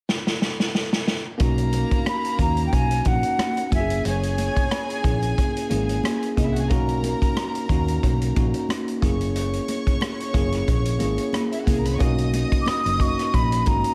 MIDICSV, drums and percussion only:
0, 0, Header, 1, 2, 480
1, 0, Start_track
1, 0, Key_signature, 5, "major"
1, 0, Tempo, 662252
1, 1021, Time_signature, 4, 2, 24, 8
1, 10104, End_track
2, 0, Start_track
2, 0, Title_t, "Drums"
2, 64, Note_on_c, 9, 38, 60
2, 137, Note_off_c, 9, 38, 0
2, 195, Note_on_c, 9, 38, 64
2, 268, Note_off_c, 9, 38, 0
2, 304, Note_on_c, 9, 38, 70
2, 376, Note_off_c, 9, 38, 0
2, 434, Note_on_c, 9, 38, 74
2, 507, Note_off_c, 9, 38, 0
2, 543, Note_on_c, 9, 38, 73
2, 615, Note_off_c, 9, 38, 0
2, 672, Note_on_c, 9, 38, 81
2, 744, Note_off_c, 9, 38, 0
2, 779, Note_on_c, 9, 38, 82
2, 852, Note_off_c, 9, 38, 0
2, 1012, Note_on_c, 9, 42, 77
2, 1013, Note_on_c, 9, 62, 25
2, 1016, Note_on_c, 9, 36, 92
2, 1085, Note_off_c, 9, 42, 0
2, 1085, Note_off_c, 9, 62, 0
2, 1088, Note_off_c, 9, 36, 0
2, 1144, Note_on_c, 9, 42, 43
2, 1217, Note_off_c, 9, 42, 0
2, 1250, Note_on_c, 9, 42, 60
2, 1258, Note_on_c, 9, 62, 46
2, 1323, Note_off_c, 9, 42, 0
2, 1331, Note_off_c, 9, 62, 0
2, 1386, Note_on_c, 9, 42, 42
2, 1387, Note_on_c, 9, 36, 74
2, 1459, Note_off_c, 9, 42, 0
2, 1460, Note_off_c, 9, 36, 0
2, 1495, Note_on_c, 9, 37, 102
2, 1497, Note_on_c, 9, 42, 73
2, 1498, Note_on_c, 9, 63, 64
2, 1568, Note_off_c, 9, 37, 0
2, 1570, Note_off_c, 9, 42, 0
2, 1570, Note_off_c, 9, 63, 0
2, 1628, Note_on_c, 9, 42, 51
2, 1701, Note_off_c, 9, 42, 0
2, 1731, Note_on_c, 9, 36, 89
2, 1732, Note_on_c, 9, 42, 57
2, 1803, Note_off_c, 9, 36, 0
2, 1804, Note_off_c, 9, 42, 0
2, 1861, Note_on_c, 9, 42, 45
2, 1933, Note_off_c, 9, 42, 0
2, 1976, Note_on_c, 9, 42, 66
2, 1977, Note_on_c, 9, 36, 76
2, 2048, Note_off_c, 9, 42, 0
2, 2049, Note_off_c, 9, 36, 0
2, 2107, Note_on_c, 9, 42, 56
2, 2179, Note_off_c, 9, 42, 0
2, 2209, Note_on_c, 9, 42, 54
2, 2213, Note_on_c, 9, 62, 36
2, 2213, Note_on_c, 9, 64, 51
2, 2216, Note_on_c, 9, 36, 79
2, 2282, Note_off_c, 9, 42, 0
2, 2286, Note_off_c, 9, 62, 0
2, 2286, Note_off_c, 9, 64, 0
2, 2289, Note_off_c, 9, 36, 0
2, 2341, Note_on_c, 9, 42, 46
2, 2413, Note_off_c, 9, 42, 0
2, 2454, Note_on_c, 9, 63, 64
2, 2459, Note_on_c, 9, 37, 98
2, 2459, Note_on_c, 9, 42, 86
2, 2527, Note_off_c, 9, 63, 0
2, 2531, Note_off_c, 9, 42, 0
2, 2532, Note_off_c, 9, 37, 0
2, 2587, Note_on_c, 9, 42, 43
2, 2660, Note_off_c, 9, 42, 0
2, 2696, Note_on_c, 9, 36, 92
2, 2697, Note_on_c, 9, 42, 67
2, 2699, Note_on_c, 9, 63, 57
2, 2769, Note_off_c, 9, 36, 0
2, 2770, Note_off_c, 9, 42, 0
2, 2772, Note_off_c, 9, 63, 0
2, 2827, Note_on_c, 9, 42, 53
2, 2900, Note_off_c, 9, 42, 0
2, 2935, Note_on_c, 9, 42, 78
2, 3007, Note_off_c, 9, 42, 0
2, 3068, Note_on_c, 9, 42, 43
2, 3140, Note_off_c, 9, 42, 0
2, 3175, Note_on_c, 9, 42, 59
2, 3177, Note_on_c, 9, 62, 49
2, 3247, Note_off_c, 9, 42, 0
2, 3249, Note_off_c, 9, 62, 0
2, 3309, Note_on_c, 9, 36, 73
2, 3309, Note_on_c, 9, 42, 45
2, 3381, Note_off_c, 9, 36, 0
2, 3381, Note_off_c, 9, 42, 0
2, 3416, Note_on_c, 9, 37, 102
2, 3418, Note_on_c, 9, 42, 75
2, 3422, Note_on_c, 9, 63, 69
2, 3489, Note_off_c, 9, 37, 0
2, 3491, Note_off_c, 9, 42, 0
2, 3495, Note_off_c, 9, 63, 0
2, 3552, Note_on_c, 9, 42, 47
2, 3624, Note_off_c, 9, 42, 0
2, 3654, Note_on_c, 9, 36, 89
2, 3658, Note_on_c, 9, 42, 61
2, 3727, Note_off_c, 9, 36, 0
2, 3731, Note_off_c, 9, 42, 0
2, 3787, Note_on_c, 9, 42, 47
2, 3859, Note_off_c, 9, 42, 0
2, 3900, Note_on_c, 9, 36, 75
2, 3900, Note_on_c, 9, 42, 69
2, 3973, Note_off_c, 9, 36, 0
2, 3973, Note_off_c, 9, 42, 0
2, 4035, Note_on_c, 9, 42, 57
2, 4107, Note_off_c, 9, 42, 0
2, 4136, Note_on_c, 9, 42, 55
2, 4136, Note_on_c, 9, 62, 34
2, 4136, Note_on_c, 9, 64, 51
2, 4208, Note_off_c, 9, 42, 0
2, 4208, Note_off_c, 9, 62, 0
2, 4208, Note_off_c, 9, 64, 0
2, 4270, Note_on_c, 9, 42, 47
2, 4342, Note_off_c, 9, 42, 0
2, 4374, Note_on_c, 9, 63, 65
2, 4385, Note_on_c, 9, 42, 92
2, 4386, Note_on_c, 9, 37, 97
2, 4446, Note_off_c, 9, 63, 0
2, 4458, Note_off_c, 9, 37, 0
2, 4458, Note_off_c, 9, 42, 0
2, 4512, Note_on_c, 9, 42, 42
2, 4585, Note_off_c, 9, 42, 0
2, 4619, Note_on_c, 9, 36, 77
2, 4619, Note_on_c, 9, 63, 57
2, 4624, Note_on_c, 9, 42, 67
2, 4691, Note_off_c, 9, 63, 0
2, 4692, Note_off_c, 9, 36, 0
2, 4696, Note_off_c, 9, 42, 0
2, 4756, Note_on_c, 9, 42, 51
2, 4828, Note_off_c, 9, 42, 0
2, 4856, Note_on_c, 9, 62, 29
2, 4860, Note_on_c, 9, 42, 76
2, 4861, Note_on_c, 9, 36, 91
2, 4929, Note_off_c, 9, 62, 0
2, 4932, Note_off_c, 9, 42, 0
2, 4933, Note_off_c, 9, 36, 0
2, 4991, Note_on_c, 9, 42, 44
2, 5063, Note_off_c, 9, 42, 0
2, 5100, Note_on_c, 9, 42, 65
2, 5100, Note_on_c, 9, 62, 48
2, 5172, Note_off_c, 9, 62, 0
2, 5173, Note_off_c, 9, 42, 0
2, 5232, Note_on_c, 9, 36, 77
2, 5235, Note_on_c, 9, 42, 46
2, 5304, Note_off_c, 9, 36, 0
2, 5307, Note_off_c, 9, 42, 0
2, 5340, Note_on_c, 9, 37, 100
2, 5340, Note_on_c, 9, 63, 65
2, 5342, Note_on_c, 9, 42, 75
2, 5412, Note_off_c, 9, 63, 0
2, 5413, Note_off_c, 9, 37, 0
2, 5415, Note_off_c, 9, 42, 0
2, 5472, Note_on_c, 9, 42, 49
2, 5544, Note_off_c, 9, 42, 0
2, 5576, Note_on_c, 9, 36, 85
2, 5579, Note_on_c, 9, 42, 60
2, 5648, Note_off_c, 9, 36, 0
2, 5652, Note_off_c, 9, 42, 0
2, 5712, Note_on_c, 9, 42, 47
2, 5785, Note_off_c, 9, 42, 0
2, 5822, Note_on_c, 9, 36, 74
2, 5824, Note_on_c, 9, 42, 68
2, 5895, Note_off_c, 9, 36, 0
2, 5896, Note_off_c, 9, 42, 0
2, 5954, Note_on_c, 9, 42, 55
2, 6027, Note_off_c, 9, 42, 0
2, 6060, Note_on_c, 9, 42, 52
2, 6063, Note_on_c, 9, 36, 79
2, 6063, Note_on_c, 9, 62, 36
2, 6063, Note_on_c, 9, 64, 49
2, 6133, Note_off_c, 9, 42, 0
2, 6135, Note_off_c, 9, 36, 0
2, 6135, Note_off_c, 9, 62, 0
2, 6135, Note_off_c, 9, 64, 0
2, 6188, Note_on_c, 9, 42, 47
2, 6261, Note_off_c, 9, 42, 0
2, 6297, Note_on_c, 9, 63, 61
2, 6307, Note_on_c, 9, 37, 98
2, 6307, Note_on_c, 9, 42, 87
2, 6369, Note_off_c, 9, 63, 0
2, 6379, Note_off_c, 9, 42, 0
2, 6380, Note_off_c, 9, 37, 0
2, 6435, Note_on_c, 9, 42, 43
2, 6507, Note_off_c, 9, 42, 0
2, 6540, Note_on_c, 9, 36, 92
2, 6541, Note_on_c, 9, 63, 57
2, 6545, Note_on_c, 9, 42, 68
2, 6613, Note_off_c, 9, 36, 0
2, 6614, Note_off_c, 9, 63, 0
2, 6618, Note_off_c, 9, 42, 0
2, 6673, Note_on_c, 9, 42, 52
2, 6745, Note_off_c, 9, 42, 0
2, 6781, Note_on_c, 9, 42, 79
2, 6853, Note_off_c, 9, 42, 0
2, 6910, Note_on_c, 9, 42, 43
2, 6983, Note_off_c, 9, 42, 0
2, 7017, Note_on_c, 9, 42, 62
2, 7020, Note_on_c, 9, 62, 47
2, 7089, Note_off_c, 9, 42, 0
2, 7092, Note_off_c, 9, 62, 0
2, 7152, Note_on_c, 9, 36, 72
2, 7155, Note_on_c, 9, 42, 42
2, 7225, Note_off_c, 9, 36, 0
2, 7228, Note_off_c, 9, 42, 0
2, 7256, Note_on_c, 9, 63, 63
2, 7263, Note_on_c, 9, 37, 97
2, 7265, Note_on_c, 9, 42, 79
2, 7328, Note_off_c, 9, 63, 0
2, 7335, Note_off_c, 9, 37, 0
2, 7337, Note_off_c, 9, 42, 0
2, 7395, Note_on_c, 9, 42, 51
2, 7468, Note_off_c, 9, 42, 0
2, 7496, Note_on_c, 9, 36, 90
2, 7498, Note_on_c, 9, 42, 61
2, 7568, Note_off_c, 9, 36, 0
2, 7570, Note_off_c, 9, 42, 0
2, 7628, Note_on_c, 9, 42, 48
2, 7635, Note_on_c, 9, 37, 31
2, 7700, Note_off_c, 9, 42, 0
2, 7707, Note_off_c, 9, 37, 0
2, 7740, Note_on_c, 9, 36, 73
2, 7740, Note_on_c, 9, 42, 70
2, 7813, Note_off_c, 9, 36, 0
2, 7813, Note_off_c, 9, 42, 0
2, 7867, Note_on_c, 9, 42, 60
2, 7940, Note_off_c, 9, 42, 0
2, 7971, Note_on_c, 9, 42, 54
2, 7973, Note_on_c, 9, 62, 37
2, 7973, Note_on_c, 9, 64, 50
2, 8044, Note_off_c, 9, 42, 0
2, 8045, Note_off_c, 9, 62, 0
2, 8045, Note_off_c, 9, 64, 0
2, 8101, Note_on_c, 9, 42, 47
2, 8174, Note_off_c, 9, 42, 0
2, 8210, Note_on_c, 9, 63, 60
2, 8219, Note_on_c, 9, 42, 88
2, 8220, Note_on_c, 9, 37, 101
2, 8283, Note_off_c, 9, 63, 0
2, 8292, Note_off_c, 9, 37, 0
2, 8292, Note_off_c, 9, 42, 0
2, 8352, Note_on_c, 9, 42, 41
2, 8425, Note_off_c, 9, 42, 0
2, 8459, Note_on_c, 9, 36, 79
2, 8459, Note_on_c, 9, 63, 56
2, 8461, Note_on_c, 9, 42, 68
2, 8531, Note_off_c, 9, 36, 0
2, 8532, Note_off_c, 9, 63, 0
2, 8534, Note_off_c, 9, 42, 0
2, 8591, Note_on_c, 9, 42, 50
2, 8664, Note_off_c, 9, 42, 0
2, 8693, Note_on_c, 9, 62, 28
2, 8699, Note_on_c, 9, 42, 72
2, 8701, Note_on_c, 9, 36, 89
2, 8766, Note_off_c, 9, 62, 0
2, 8771, Note_off_c, 9, 42, 0
2, 8773, Note_off_c, 9, 36, 0
2, 8831, Note_on_c, 9, 42, 42
2, 8903, Note_off_c, 9, 42, 0
2, 8940, Note_on_c, 9, 42, 66
2, 8942, Note_on_c, 9, 62, 48
2, 9012, Note_off_c, 9, 42, 0
2, 9015, Note_off_c, 9, 62, 0
2, 9074, Note_on_c, 9, 36, 76
2, 9075, Note_on_c, 9, 42, 45
2, 9147, Note_off_c, 9, 36, 0
2, 9148, Note_off_c, 9, 42, 0
2, 9178, Note_on_c, 9, 63, 62
2, 9188, Note_on_c, 9, 37, 96
2, 9190, Note_on_c, 9, 42, 77
2, 9251, Note_off_c, 9, 63, 0
2, 9260, Note_off_c, 9, 37, 0
2, 9262, Note_off_c, 9, 42, 0
2, 9321, Note_on_c, 9, 42, 51
2, 9393, Note_off_c, 9, 42, 0
2, 9421, Note_on_c, 9, 36, 79
2, 9425, Note_on_c, 9, 42, 60
2, 9494, Note_off_c, 9, 36, 0
2, 9498, Note_off_c, 9, 42, 0
2, 9560, Note_on_c, 9, 42, 49
2, 9567, Note_on_c, 9, 37, 34
2, 9633, Note_off_c, 9, 42, 0
2, 9640, Note_off_c, 9, 37, 0
2, 9668, Note_on_c, 9, 36, 75
2, 9669, Note_on_c, 9, 42, 71
2, 9740, Note_off_c, 9, 36, 0
2, 9741, Note_off_c, 9, 42, 0
2, 9800, Note_on_c, 9, 42, 60
2, 9872, Note_off_c, 9, 42, 0
2, 9900, Note_on_c, 9, 62, 37
2, 9900, Note_on_c, 9, 64, 52
2, 9901, Note_on_c, 9, 42, 55
2, 9907, Note_on_c, 9, 36, 76
2, 9973, Note_off_c, 9, 42, 0
2, 9973, Note_off_c, 9, 62, 0
2, 9973, Note_off_c, 9, 64, 0
2, 9980, Note_off_c, 9, 36, 0
2, 10032, Note_on_c, 9, 42, 48
2, 10104, Note_off_c, 9, 42, 0
2, 10104, End_track
0, 0, End_of_file